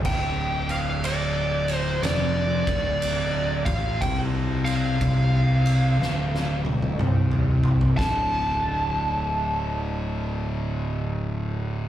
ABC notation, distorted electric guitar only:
X:1
M:4/4
L:1/8
Q:"Swing" 1/4=60
K:Dm
V:1 name="Distorted electric guitar" clef=bass
D,,4 F,, D,,2 A,, | C,2 C,2 D,,2 C,2 | [D,,A,,D,]8 |]